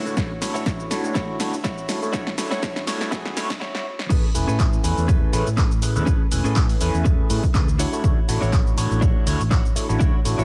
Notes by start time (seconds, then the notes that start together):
Already playing: E4 F#4 C#5 E5
0.05 D2 A3 D4 E4 F#4 C#5, cabasa
0.16 D2 A3 D4 E4 C#5, kick, snare, cabasa
0.41 A1 A3 D4 E4 F#4 C#5, snare, open hi-hat, cabasa
0.54 A1 E4 F#4 C#5, cabasa
0.66 kick, snare, cabasa
0.80 cabasa
0.90 A1 A3 D4 E4 F#4 C#5, snare, open hi-hat, cabasa
1.04 A1, cabasa
1.14 E4 F#4 C#5, kick, snare, cabasa
1.29 muted fingered electric bass stroke
1.40 D2 A3 D4 E4 F#4 C#5, snare, open hi-hat, cabasa
1.53 A1, cabasa
1.64 E4 F#4 C#5, kick, snare, cabasa
1.78 cabasa
1.89 A3 D4 E4 F#4 C#5, snare, open hi-hat, cabasa
2.02 A1 A3 D4 E4 F#4 C#5, cabasa
2.13 A3 D4 E4 F#4 C#5, kick, snare, cabasa
2.27 snare
2.38 A1 A3 D4 E4 F#4 C#5, snare, open hi-hat, cabasa
2.51 A1 E4 F#4 C#5, snare, cabasa
2.63 kick, snare, cabasa
2.76 snare, cabasa
2.87 A1 A3 D4 E4 F#4 C#5, snare, open hi-hat, cabasa
3.01 A1, snare, cabasa
3.11 E4 F#4 G#4, kick, snare, cabasa
3.25 snare
3.36 A1 A3 D4 E4 F#4 C#5, snare, open hi-hat, cabasa
3.50 kick, snare, cabasa
3.60 E4 F#4 C#5, snare
3.75 snare
3.99 snare
4.09 A1 A3 C#4 E4 G#4 A4 B4, kick, crash, cabasa
4.35 E1 A3 C#4 E4 B4 G#5, open hi-hat, cabasa
4.47 A2 C#4 G#4 A4 B4, cabasa
4.60 kick, clap, cabasa
4.73 cabasa
4.83 E2 A3 C#4 E4 B4 G#5, muted clean electric guitar stroke, open hi-hat, cabasa
4.98 E2, cabasa
5.08 C#4 G#4 A4 B4, kick, cabasa
5.22 muted fingered electric bass stroke
5.33 A1 A3 C#4 E4 G#4 B4, open hi-hat, cabasa
5.47 A2, cabasa
5.57 C#4 G#4 A4 B4, kick, clap, cabasa
5.71 cabasa
5.82 A3 C#4 E4 G#4 B4, muted clean electric guitar stroke, open hi-hat, cabasa
5.95 E2 A3 C#4 E4 G#4 B4, cabasa
6.06 A1 A3 C#4 G#4 A4 B4, kick, cabasa
6.31 E1 A3 C#4 E4 B4 G#5, open hi-hat, cabasa
6.44 A2 C#4 G#4 A4 B4, cabasa
6.56 kick, clap, cabasa
6.69 open hi-hat, cabasa
6.80 E2 A3 C#4 E4 B4 G#5, muted clean electric guitar stroke, open hi-hat, cabasa
6.94 E2, cabasa
7.04 C#4 G#4 A4 B4, kick, cabasa
7.19 muted fingered electric bass stroke
7.30 A2 A3 C#4 E4 G#4 B4, open hi-hat, cabasa
7.43 muted fingered electric bass stroke, kick, cabasa
7.54 D2 C#4 G#4 A4 B4, kick, clap, cabasa
7.68 cabasa
7.78 A3 D4 E4 F#4 C#5, open hi-hat, cabasa
7.92 A3 D4 E4 F#4 C#5, cabasa
8.04 D2 A3 D4 E4 F#4 C#5, kick, cabasa
8.28 A1 A3 D4 E4 F#4 C#5, open hi-hat, cabasa
8.41 A1 D4 E4 F#4 C#5, cabasa
8.53 kick, clap, cabasa
8.67 cabasa
8.77 A1 A3 D4 E4 F#4 C#5, muted clean electric guitar stroke, open hi-hat, cabasa
8.91 A1, cabasa
9.01 D4 E4 F#4 C#5, kick, cabasa
9.15 muted fingered electric bass stroke
9.26 D2 A3 D4 E4 F#4 C#5, open hi-hat, cabasa
9.40 A1, cabasa
9.50 D4 E4 F#4 C#5, kick, clap, cabasa
9.65 cabasa
9.75 A3 D4 E4 F#4 C#5, muted clean electric guitar stroke, muted fingered electric bass stroke, open hi-hat, cabasa
9.89 A1 A3 D4 E4 F#4 C#5, cabasa
9.99 D2 A3 D4 E4 F#4 C#5, kick, cabasa
10.25 A1 A3 D4 E4 F#4 C#5, open hi-hat, cabasa
10.38 A1 D4 E4 F#4 C#5, cabasa